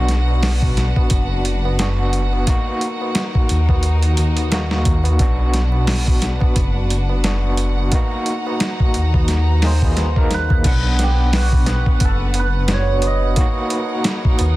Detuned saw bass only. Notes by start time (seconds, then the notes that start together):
Already playing: B1
1.11 F#1
3.51 D#2
4.18 D#2
5.20 B1
6.56 F#1
8.96 D#2
9.30 D#2
10.65 B1
12.01 F#1
14.40 D#2